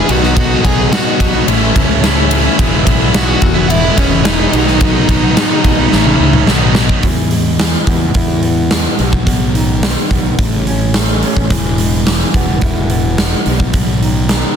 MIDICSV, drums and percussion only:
0, 0, Header, 1, 2, 480
1, 0, Start_track
1, 0, Key_signature, 4, "major"
1, 0, Tempo, 557103
1, 313, Time_signature, 4, 2, 24, 8
1, 12545, End_track
2, 0, Start_track
2, 0, Title_t, "Drums"
2, 78, Note_on_c, 9, 51, 66
2, 164, Note_off_c, 9, 51, 0
2, 201, Note_on_c, 9, 38, 31
2, 287, Note_off_c, 9, 38, 0
2, 316, Note_on_c, 9, 36, 117
2, 317, Note_on_c, 9, 51, 102
2, 402, Note_off_c, 9, 36, 0
2, 403, Note_off_c, 9, 51, 0
2, 556, Note_on_c, 9, 36, 94
2, 559, Note_on_c, 9, 51, 72
2, 642, Note_off_c, 9, 36, 0
2, 645, Note_off_c, 9, 51, 0
2, 797, Note_on_c, 9, 51, 98
2, 798, Note_on_c, 9, 38, 118
2, 883, Note_off_c, 9, 51, 0
2, 884, Note_off_c, 9, 38, 0
2, 1035, Note_on_c, 9, 36, 81
2, 1039, Note_on_c, 9, 51, 75
2, 1121, Note_off_c, 9, 36, 0
2, 1125, Note_off_c, 9, 51, 0
2, 1276, Note_on_c, 9, 51, 106
2, 1362, Note_off_c, 9, 51, 0
2, 1515, Note_on_c, 9, 36, 95
2, 1516, Note_on_c, 9, 51, 75
2, 1601, Note_off_c, 9, 36, 0
2, 1602, Note_off_c, 9, 51, 0
2, 1755, Note_on_c, 9, 51, 102
2, 1756, Note_on_c, 9, 38, 107
2, 1841, Note_off_c, 9, 51, 0
2, 1842, Note_off_c, 9, 38, 0
2, 1990, Note_on_c, 9, 51, 85
2, 2077, Note_off_c, 9, 51, 0
2, 2232, Note_on_c, 9, 36, 105
2, 2235, Note_on_c, 9, 51, 99
2, 2319, Note_off_c, 9, 36, 0
2, 2321, Note_off_c, 9, 51, 0
2, 2470, Note_on_c, 9, 36, 94
2, 2472, Note_on_c, 9, 51, 84
2, 2557, Note_off_c, 9, 36, 0
2, 2558, Note_off_c, 9, 51, 0
2, 2708, Note_on_c, 9, 51, 99
2, 2709, Note_on_c, 9, 38, 120
2, 2794, Note_off_c, 9, 51, 0
2, 2795, Note_off_c, 9, 38, 0
2, 2944, Note_on_c, 9, 51, 64
2, 2947, Note_on_c, 9, 36, 92
2, 3030, Note_off_c, 9, 51, 0
2, 3033, Note_off_c, 9, 36, 0
2, 3189, Note_on_c, 9, 51, 96
2, 3275, Note_off_c, 9, 51, 0
2, 3425, Note_on_c, 9, 51, 77
2, 3426, Note_on_c, 9, 36, 83
2, 3511, Note_off_c, 9, 51, 0
2, 3512, Note_off_c, 9, 36, 0
2, 3663, Note_on_c, 9, 51, 94
2, 3664, Note_on_c, 9, 38, 117
2, 3749, Note_off_c, 9, 51, 0
2, 3750, Note_off_c, 9, 38, 0
2, 3906, Note_on_c, 9, 51, 69
2, 3992, Note_off_c, 9, 51, 0
2, 4028, Note_on_c, 9, 38, 35
2, 4114, Note_off_c, 9, 38, 0
2, 4141, Note_on_c, 9, 51, 100
2, 4144, Note_on_c, 9, 36, 116
2, 4228, Note_off_c, 9, 51, 0
2, 4230, Note_off_c, 9, 36, 0
2, 4384, Note_on_c, 9, 36, 87
2, 4385, Note_on_c, 9, 51, 71
2, 4470, Note_off_c, 9, 36, 0
2, 4472, Note_off_c, 9, 51, 0
2, 4626, Note_on_c, 9, 51, 96
2, 4627, Note_on_c, 9, 38, 116
2, 4712, Note_off_c, 9, 51, 0
2, 4713, Note_off_c, 9, 38, 0
2, 4863, Note_on_c, 9, 36, 77
2, 4863, Note_on_c, 9, 51, 71
2, 4949, Note_off_c, 9, 36, 0
2, 4950, Note_off_c, 9, 51, 0
2, 5103, Note_on_c, 9, 38, 67
2, 5189, Note_off_c, 9, 38, 0
2, 5218, Note_on_c, 9, 48, 64
2, 5304, Note_off_c, 9, 48, 0
2, 5457, Note_on_c, 9, 47, 77
2, 5543, Note_off_c, 9, 47, 0
2, 5578, Note_on_c, 9, 38, 92
2, 5664, Note_off_c, 9, 38, 0
2, 5815, Note_on_c, 9, 38, 101
2, 5901, Note_off_c, 9, 38, 0
2, 5940, Note_on_c, 9, 36, 89
2, 6026, Note_off_c, 9, 36, 0
2, 6056, Note_on_c, 9, 46, 73
2, 6060, Note_on_c, 9, 36, 103
2, 6143, Note_off_c, 9, 46, 0
2, 6146, Note_off_c, 9, 36, 0
2, 6297, Note_on_c, 9, 46, 55
2, 6383, Note_off_c, 9, 46, 0
2, 6543, Note_on_c, 9, 46, 66
2, 6544, Note_on_c, 9, 38, 99
2, 6630, Note_off_c, 9, 38, 0
2, 6630, Note_off_c, 9, 46, 0
2, 6781, Note_on_c, 9, 46, 49
2, 6782, Note_on_c, 9, 36, 82
2, 6867, Note_off_c, 9, 46, 0
2, 6868, Note_off_c, 9, 36, 0
2, 7017, Note_on_c, 9, 46, 63
2, 7021, Note_on_c, 9, 36, 112
2, 7103, Note_off_c, 9, 46, 0
2, 7107, Note_off_c, 9, 36, 0
2, 7261, Note_on_c, 9, 46, 52
2, 7347, Note_off_c, 9, 46, 0
2, 7502, Note_on_c, 9, 46, 68
2, 7503, Note_on_c, 9, 38, 97
2, 7588, Note_off_c, 9, 46, 0
2, 7589, Note_off_c, 9, 38, 0
2, 7744, Note_on_c, 9, 46, 45
2, 7831, Note_off_c, 9, 46, 0
2, 7865, Note_on_c, 9, 36, 79
2, 7951, Note_off_c, 9, 36, 0
2, 7985, Note_on_c, 9, 36, 95
2, 7988, Note_on_c, 9, 46, 70
2, 8071, Note_off_c, 9, 36, 0
2, 8075, Note_off_c, 9, 46, 0
2, 8230, Note_on_c, 9, 46, 53
2, 8316, Note_off_c, 9, 46, 0
2, 8469, Note_on_c, 9, 46, 75
2, 8470, Note_on_c, 9, 38, 103
2, 8555, Note_off_c, 9, 46, 0
2, 8556, Note_off_c, 9, 38, 0
2, 8709, Note_on_c, 9, 36, 77
2, 8715, Note_on_c, 9, 46, 49
2, 8795, Note_off_c, 9, 36, 0
2, 8801, Note_off_c, 9, 46, 0
2, 8949, Note_on_c, 9, 36, 106
2, 8951, Note_on_c, 9, 46, 72
2, 9035, Note_off_c, 9, 36, 0
2, 9037, Note_off_c, 9, 46, 0
2, 9193, Note_on_c, 9, 46, 53
2, 9279, Note_off_c, 9, 46, 0
2, 9427, Note_on_c, 9, 46, 80
2, 9428, Note_on_c, 9, 38, 106
2, 9513, Note_off_c, 9, 46, 0
2, 9514, Note_off_c, 9, 38, 0
2, 9673, Note_on_c, 9, 46, 56
2, 9759, Note_off_c, 9, 46, 0
2, 9793, Note_on_c, 9, 36, 74
2, 9879, Note_off_c, 9, 36, 0
2, 9912, Note_on_c, 9, 36, 98
2, 9912, Note_on_c, 9, 46, 72
2, 9999, Note_off_c, 9, 36, 0
2, 9999, Note_off_c, 9, 46, 0
2, 10151, Note_on_c, 9, 46, 60
2, 10237, Note_off_c, 9, 46, 0
2, 10396, Note_on_c, 9, 46, 67
2, 10397, Note_on_c, 9, 38, 94
2, 10482, Note_off_c, 9, 46, 0
2, 10483, Note_off_c, 9, 38, 0
2, 10634, Note_on_c, 9, 36, 84
2, 10634, Note_on_c, 9, 46, 52
2, 10720, Note_off_c, 9, 36, 0
2, 10720, Note_off_c, 9, 46, 0
2, 10869, Note_on_c, 9, 46, 72
2, 10874, Note_on_c, 9, 36, 109
2, 10955, Note_off_c, 9, 46, 0
2, 10960, Note_off_c, 9, 36, 0
2, 11112, Note_on_c, 9, 46, 53
2, 11199, Note_off_c, 9, 46, 0
2, 11358, Note_on_c, 9, 38, 98
2, 11358, Note_on_c, 9, 46, 70
2, 11444, Note_off_c, 9, 46, 0
2, 11445, Note_off_c, 9, 38, 0
2, 11596, Note_on_c, 9, 46, 47
2, 11682, Note_off_c, 9, 46, 0
2, 11717, Note_on_c, 9, 36, 73
2, 11803, Note_off_c, 9, 36, 0
2, 11834, Note_on_c, 9, 46, 68
2, 11836, Note_on_c, 9, 36, 99
2, 11920, Note_off_c, 9, 46, 0
2, 11923, Note_off_c, 9, 36, 0
2, 12084, Note_on_c, 9, 46, 51
2, 12170, Note_off_c, 9, 46, 0
2, 12314, Note_on_c, 9, 46, 65
2, 12315, Note_on_c, 9, 38, 97
2, 12400, Note_off_c, 9, 46, 0
2, 12401, Note_off_c, 9, 38, 0
2, 12545, End_track
0, 0, End_of_file